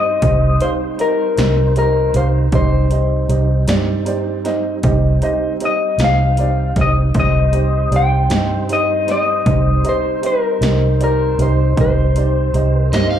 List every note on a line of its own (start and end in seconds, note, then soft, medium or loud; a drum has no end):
0.00 0.18 G2 medium
0.00 2.48 G3 medium
0.00 2.48 C4 medium
0.00 0.13 D#4 soft
0.00 2.49 D#4 medium
0.00 0.13 G4 soft
0.00 0.13 C5 soft
0.00 2.49 C5 medium
0.00 0.14 D#5 medium
0.00 0.64 D#5 medium
0.22 0.58 C2 medium
0.22 0.52 D#4 soft
0.22 0.52 G4 soft
0.22 0.52 C5 soft
0.22 0.53 D#5 medium
0.22 kick medium
0.22 closed hi-hat medium
0.61 0.90 D#4 soft
0.61 0.90 G4 soft
0.61 0.90 C5 soft
0.61 0.72 C5 medium
0.61 0.90 F5 medium
0.61 closed hi-hat soft
0.99 1.28 D#4 soft
0.99 1.28 G4 soft
0.99 1.73 A#4 medium
0.99 1.29 C5 soft
0.99 1.29 D#5 medium
0.99 closed hi-hat medium
1.37 2.11 C2 medium
1.37 1.66 D#4 soft
1.37 1.67 G4 soft
1.37 1.67 C5 soft
1.37 1.67 D#5 medium
1.37 snare medium
1.37 closed hi-hat medium
1.76 2.05 D#4 soft
1.76 2.05 G4 soft
1.76 2.16 A#4 medium
1.76 2.06 C5 soft
1.76 2.06 D#5 medium
1.76 closed hi-hat medium
2.14 2.50 C2 medium
2.14 2.43 D#4 medium
2.14 2.44 G4 soft
2.14 2.44 C5 soft
2.14 2.27 C5 medium
2.14 2.44 F5 medium
2.14 closed hi-hat medium
2.51 3.26 C2 medium
2.51 7.10 G3 medium
2.51 7.10 C4 medium
2.51 7.10 D#4 medium
2.51 2.82 D#4 medium
2.51 2.82 G4 soft
2.51 2.82 C5 medium
2.51 2.82 D#5 medium
2.51 kick medium
2.51 closed hi-hat medium
2.55 4.04 C5 medium
2.91 3.20 D#4 soft
2.91 3.20 G4 soft
2.91 3.21 C5 soft
2.91 3.21 D#5 soft
2.91 closed hi-hat medium
3.29 3.65 C2 medium
3.29 3.58 D#4 soft
3.29 3.59 G4 soft
3.29 3.59 C5 soft
3.29 3.59 D#5 medium
3.29 closed hi-hat soft
3.67 4.80 G2 medium
3.67 3.97 D#4 medium
3.67 3.97 G4 soft
3.67 3.97 C5 soft
3.67 3.97 D5 medium
3.67 snare loud
3.67 closed hi-hat medium
4.05 4.35 D#4 medium
4.05 4.35 G4 medium
4.05 4.36 C5 medium
4.05 4.36 D5 medium
4.05 closed hi-hat medium
4.44 4.74 D#4 medium
4.44 4.74 G4 soft
4.44 4.74 C5 medium
4.44 4.75 D#5 medium
4.44 snare soft
4.44 closed hi-hat medium
4.83 5.19 C2 medium
4.83 5.13 D#4 medium
4.83 5.13 G4 medium
4.83 5.13 C5 medium
4.83 5.13 D#5 medium
4.83 kick medium
4.83 closed hi-hat medium
5.22 5.51 D#4 medium
5.22 5.51 G4 medium
5.22 5.52 C5 medium
5.22 5.52 D#5 medium
5.22 closed hi-hat soft
5.60 5.90 D#4 soft
5.60 5.90 G4 soft
5.60 5.90 C5 soft
5.60 5.91 D#5 medium
5.60 closed hi-hat medium
5.65 6.03 D#5 medium
5.98 6.72 C2 medium
5.98 6.28 D#4 medium
5.98 6.29 G4 soft
5.98 6.29 C5 soft
5.98 6.29 F5 medium
5.98 snare medium
5.98 closed hi-hat medium
6.04 6.75 F5 medium
6.37 6.67 D#4 medium
6.37 6.67 G4 soft
6.37 6.67 C5 soft
6.37 6.68 D5 medium
6.37 closed hi-hat medium
6.76 7.12 C2 medium
6.76 7.05 D#4 soft
6.76 7.05 G4 soft
6.76 7.06 C5 soft
6.76 7.06 D#5 medium
6.76 kick medium
6.76 snare soft
6.76 closed hi-hat soft
6.81 6.91 D#5 medium
7.14 7.88 C2 medium
7.14 11.74 G3 medium
7.14 11.73 C4 medium
7.14 11.73 D#4 medium
7.14 7.44 D#4 medium
7.14 7.44 G4 medium
7.14 11.74 C5 medium
7.14 7.44 C5 medium
7.14 7.44 D#5 medium
7.14 kick medium
7.14 closed hi-hat medium
7.20 7.96 D#5 medium
7.52 7.82 D#4 soft
7.52 7.82 G4 soft
7.52 7.83 C5 soft
7.52 7.83 D#5 medium
7.52 closed hi-hat medium
7.91 8.27 C2 medium
7.91 8.20 D#4 soft
7.91 8.21 G4 soft
7.91 8.21 C5 soft
7.91 8.21 D5 medium
7.91 closed hi-hat soft
7.96 8.72 G5 loud
8.30 9.42 G2 medium
8.30 8.59 D#4 soft
8.30 8.59 G4 soft
8.30 8.59 C5 soft
8.30 8.60 D#5 medium
8.30 snare loud
8.30 closed hi-hat medium
8.69 8.98 D#4 soft
8.69 8.98 G4 soft
8.69 8.99 C5 soft
8.69 8.99 D#5 medium
8.69 closed hi-hat medium
8.73 9.10 D#5 medium
9.07 9.36 D#4 medium
9.07 9.37 G4 soft
9.07 9.37 C5 soft
9.07 9.37 D#5 medium
9.07 snare soft
9.07 closed hi-hat medium
9.11 9.89 D#5 medium
9.46 9.82 C2 medium
9.46 9.75 D#4 medium
9.46 9.75 G4 soft
9.46 9.75 C5 soft
9.46 9.76 D#5 medium
9.46 kick medium
9.46 closed hi-hat medium
9.84 10.13 D#4 medium
9.84 10.13 G4 soft
9.84 10.14 C5 soft
9.84 10.14 D#5 medium
9.84 closed hi-hat medium
9.89 10.26 C5 medium
10.22 10.51 D#4 soft
10.22 10.52 G4 soft
10.22 10.52 C5 soft
10.22 10.52 D#5 medium
10.22 closed hi-hat medium
10.26 11.03 A#4 medium
10.61 11.35 C2 medium
10.61 10.90 D#4 soft
10.61 10.91 G4 soft
10.61 10.91 C5 soft
10.61 10.91 D#5 medium
10.61 snare medium
10.61 closed hi-hat medium
11.00 11.29 D#4 soft
11.00 11.29 G4 soft
11.00 11.42 A#4 medium
11.00 11.30 C5 soft
11.00 11.30 D5 medium
11.00 closed hi-hat medium
11.38 11.74 C2 medium
11.38 11.68 D#4 medium
11.38 11.68 G4 soft
11.38 11.68 C5 soft
11.38 11.80 C5 medium
11.38 11.69 D#5 medium
11.38 closed hi-hat medium
11.76 12.51 C2 medium
11.76 13.19 G3 medium
11.76 13.19 C4 medium
11.76 13.19 D#4 medium
11.76 12.06 D#4 medium
11.76 12.06 G4 medium
11.76 13.19 C5 medium
11.76 12.06 C5 soft
11.76 12.07 D#5 medium
11.76 kick medium
11.76 closed hi-hat medium
11.81 12.80 C5 medium
12.16 12.45 D#4 soft
12.16 12.45 G4 soft
12.16 12.46 C5 soft
12.16 12.46 D5 medium
12.16 closed hi-hat medium
12.54 12.90 C2 medium
12.54 12.83 D#4 soft
12.54 12.84 G4 soft
12.54 12.84 C5 soft
12.54 12.84 D#5 medium
12.54 closed hi-hat soft
12.80 13.19 A#4 medium
12.93 13.19 G2 medium
12.93 13.19 D#4 medium
12.93 13.19 G4 soft
12.93 13.19 C5 soft
12.93 13.10 D#5 medium
12.93 13.19 D#5 medium
12.93 snare loud
12.93 closed hi-hat medium
13.11 13.19 F5 medium